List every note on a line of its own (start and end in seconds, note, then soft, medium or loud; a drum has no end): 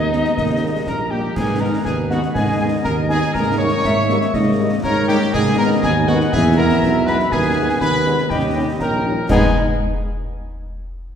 0.00 0.26 D#2 medium
0.00 0.34 G#3 medium
0.00 0.14 A#3 medium
0.00 0.34 B3 medium
0.00 0.88 D#4 medium
0.00 0.86 D#5 medium
0.00 1.08 D#5 medium
0.12 0.22 G#3 medium
0.12 0.22 B3 medium
0.12 0.39 B3 medium
0.12 0.21 D#4 medium
0.12 snare medium
0.25 snare soft
0.37 0.79 D#2 medium
0.37 1.12 G3 medium
0.37 1.08 A#3 medium
0.37 0.61 A#3 medium
0.37 concert bass drum medium
0.37 snare medium
0.62 0.71 G3 soft
0.62 0.89 G#3 medium
0.62 0.71 A#3 soft
0.62 0.71 D#4 soft
0.87 1.29 A#1 medium
0.87 1.12 A#3 medium
0.87 0.98 A#4 medium
0.87 1.12 A#5 medium
0.87 concert bass drum medium
0.87 snare medium
1.11 1.20 G3 soft
1.11 1.20 A#3 soft
1.11 1.35 A#3 medium
1.11 1.20 D#4 medium
1.11 1.35 G4 medium
1.11 1.35 G5 medium
1.35 1.78 G#2 medium
1.35 3.31 D#3 medium
1.35 3.31 B3 medium
1.35 1.61 G#4 medium
1.35 2.32 B4 medium
1.35 1.61 G#5 medium
1.35 concert bass drum medium
1.35 snare medium
1.35 crash medium
1.60 1.70 G#3 soft
1.60 1.70 B3 medium
1.60 1.70 D#4 medium
1.60 1.73 A#4 medium
1.60 1.84 A#5 medium
1.84 2.27 D#2 medium
1.84 1.97 G#4 medium
1.84 1.90 G#5 medium
1.84 concert bass drum medium
1.84 snare medium
2.10 2.20 G#3 medium
2.10 2.20 B3 medium
2.10 2.19 D#4 medium
2.10 2.22 F#4 medium
2.10 2.33 F#5 medium
2.10 snare medium
2.23 snare soft
2.33 2.77 G#2 medium
2.33 2.58 G#4 medium
2.33 3.81 D#5 medium
2.33 2.57 G#5 medium
2.33 concert bass drum medium
2.33 snare medium
2.59 2.70 G#3 medium
2.59 2.69 B3 medium
2.59 2.69 D#4 medium
2.59 2.71 G#4 medium
2.59 2.65 G#5 medium
2.83 3.27 D#2 medium
2.83 2.95 A#4 medium
2.83 2.90 A#5 medium
2.83 concert bass drum medium
2.83 snare medium
3.09 3.19 G#3 medium
3.09 3.19 B3 medium
3.09 3.19 D#4 medium
3.09 3.33 G#4 loud
3.09 3.32 G#5 medium
3.09 snare medium
3.22 snare soft
3.33 3.76 G#2 medium
3.33 5.29 D#3 medium
3.33 5.29 A#3 medium
3.33 3.59 A#4 medium
3.33 3.57 A#5 medium
3.33 concert bass drum medium
3.33 snare medium
3.58 3.69 G3 medium
3.58 3.69 A#3 medium
3.58 3.69 D#4 medium
3.58 4.54 C#5 loud
3.58 4.55 C#6 medium
3.85 4.26 G#2 medium
3.85 4.31 E5 medium
3.85 concert bass drum medium
3.85 snare medium
4.09 4.18 G3 medium
4.09 4.18 A#3 medium
4.09 4.18 D#4 medium
4.09 snare medium
4.21 snare soft
4.34 4.76 G#2 medium
4.34 4.80 D#5 medium
4.34 concert bass drum medium
4.34 snare medium
4.59 4.68 G3 medium
4.59 4.68 A#3 medium
4.59 4.68 D#4 medium
4.82 5.26 G#2 medium
4.82 5.06 A#4 loud
4.82 5.30 C#5 medium
4.82 5.07 A#5 loud
4.82 concert bass drum medium
4.82 snare medium
5.07 5.17 G3 medium
5.07 5.17 A#3 medium
5.07 5.17 D#4 medium
5.07 5.31 G4 loud
5.07 5.13 G5 medium
5.07 snare medium
5.21 snare soft
5.33 5.75 G#2 medium
5.33 6.28 D#3 medium
5.33 7.28 B3 medium
5.33 5.56 G#4 loud
5.33 6.29 D#5 loud
5.33 5.39 G#5 medium
5.33 concert bass drum medium
5.33 snare medium
5.33 crash soft
5.57 5.67 G#3 medium
5.57 5.66 B3 medium
5.57 5.67 D#4 medium
5.57 5.68 A#4 loud
5.57 5.65 A#5 medium
5.81 6.24 D#2 medium
5.81 5.93 G#4 loud
5.81 6.10 G#5 loud
5.81 concert bass drum medium
5.81 snare medium
6.07 6.16 G#3 medium
6.07 6.17 B3 medium
6.07 6.17 D#4 medium
6.07 6.18 F#4 loud
6.07 6.34 F#5 medium
6.07 snare medium
6.20 snare soft
6.32 6.70 E2 medium
6.32 7.31 E3 medium
6.32 6.43 G#4 loud
6.32 7.32 E5 loud
6.32 6.56 G#5 medium
6.32 concert bass drum medium
6.32 snare medium
6.56 6.66 G#3 medium
6.56 6.66 B3 medium
6.56 6.66 E4 medium
6.56 7.03 A#4 loud
6.56 7.03 A#5 loud
6.83 7.24 B1 medium
6.83 concert bass drum medium
6.83 snare medium
7.06 7.15 G#3 medium
7.06 7.16 B3 medium
7.06 7.16 E4 medium
7.06 7.17 B4 loud
7.06 7.34 B5 medium
7.06 snare medium
7.20 snare medium
7.31 7.73 D#2 medium
7.31 8.31 D#3 medium
7.31 8.26 B3 medium
7.31 7.77 G#4 medium
7.31 8.27 B4 medium
7.31 7.80 G#5 medium
7.31 concert bass drum medium
7.31 snare medium
7.57 7.66 G#3 medium
7.57 7.66 B3 medium
7.57 7.66 G#4 medium
7.80 8.22 D#2 medium
7.80 8.26 B4 loud
7.80 8.31 B5 loud
7.80 concert bass drum medium
7.80 snare medium
8.06 8.15 G#3 medium
8.06 8.15 B3 medium
8.06 8.15 G#4 medium
8.06 snare medium
8.18 snare soft
8.30 8.72 D#2 medium
8.30 9.00 G3 medium
8.30 9.04 C#4 medium
8.30 8.54 G4 medium
8.30 8.77 D#5 medium
8.30 8.54 G5 medium
8.30 concert bass drum medium
8.30 snare medium
8.55 8.64 G3 soft
8.55 8.65 C#4 medium
8.55 8.65 D#4 medium
8.55 8.66 G4 medium
8.55 8.61 G5 medium
8.80 9.22 A#1 medium
8.80 9.27 A#4 medium
8.80 9.05 G5 medium
8.80 9.26 A#5 medium
8.80 concert bass drum medium
8.80 snare medium
9.05 9.14 G3 medium
9.05 9.14 C#4 medium
9.05 9.14 D#4 medium
9.29 9.50 G#2 medium
9.29 9.50 G#3 medium
9.29 9.51 G#3 medium
9.29 9.51 B3 medium
9.29 9.51 D#4 medium
9.29 9.51 G#4 medium
9.29 9.51 B4 medium
9.29 9.51 D#5 medium
9.29 9.57 G#5 medium
9.29 concert bass drum loud
9.29 snare medium
9.29 crash medium